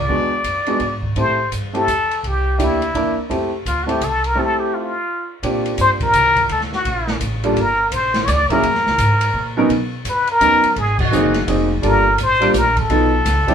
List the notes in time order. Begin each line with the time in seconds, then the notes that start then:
Already playing: D5
0.08 E2 G#3 B3 D4 F#4
0.44 F#2, kick, hi-hat pedal, ride
0.66 G#3 B3 D4 F#4, ride
0.80 G#2, kick, ride
1.03 kick
1.16 A2 A3 C4 E4 G4 C5, kick, ride
1.52 G2, kick, hi-hat pedal, ride
1.73 A3 C4 E4 G4 A4, ride
1.87 E2, kick, hi-hat pedal, ride
2.11 ride
2.23 C2 G4, kick, ride
2.58 D2 A#3 D4 E4 G4, kick, hi-hat pedal, ride
2.63 E4
2.82 ride
2.94 E2 A#3 D4 E4 A#4, kick, ride
3.18 muted upright bass stroke
3.29 F2 A3 C4 E4 G4, kick, ride
3.66 D2 F4, kick, hi-hat pedal, ride
3.83 A3 C4 F#4
3.87 E4 G4 A4, ride
4.01 C2 A4, kick, hi-hat pedal, ride
4.24 A#4, ride
4.35 A3 C4 E4 G4 A4
4.60 G4
4.74 F4
5.43 A#2 A#3 C4 D4 F4 G4, kick, ride
5.66 ride
5.78 G2 C5, kick, hi-hat pedal, ride
6.00 A#4, kick, ride
6.13 C2, kick, hi-hat pedal, ride
6.36 kick, ride
6.49 D2 A4, kick, ride
6.61 snare
6.73 F#4, snare
6.85 A#1, kick, ride
7.07 snare
7.21 A1, kick, hi-hat pedal, ride
7.43 G3 A#3 D4 F4 A4, ride
7.56 G1 A#4, kick, ride
7.92 A#1 C5, kick, hi-hat pedal, ride
8.14 snare, ride
8.25 D2 C#5 D5, kick, snare, hi-hat pedal, ride
8.50 F#3 A#3 C#4 E4 G#4 A#4, kick, ride
8.63 F#2, kick, ride
8.75 E2, snare
8.87 C#2, snare
8.98 G#2, kick, hi-hat pedal, ride
9.21 ride
9.34 A#2, kick
9.57 F#3 B3 C#4 D#4 A#4
9.69 B2, kick, ride
10.05 F#2, kick, hi-hat pedal, ride
10.09 B4
10.27 ride
10.31 A#4
10.40 D#2 F#3 B3 C#4 D#4 A#4, kick, hi-hat pedal, ride
10.63 muted upright bass stroke, ride
10.76 G#1 G#4, kick, ride
10.99 F#4, kick, crash
11.11 F#1 F#3 A#3 C4 D#4 G#4, hi-hat pedal
11.34 snare, ride
11.47 F1 F#3 A#3 C4 D#4 G#4, kick, ride
11.82 G1 G3 A#3 D4 F4 A4, kick, ride
11.86 A#4
12.18 A1, kick, hi-hat pedal, ride
12.23 C5
12.40 G3 A#3 D4 F4 A#4, ride
12.54 A#1, kick, snare, hi-hat pedal, ride
12.58 A#4
12.77 A4, kick, ride
12.90 B1 F#3 B3 D#4 F4 A4, kick, ride
13.25 C#2, kick, snare, hi-hat pedal, ride
13.47 G3 C4 D4 E4 G4, kick, ride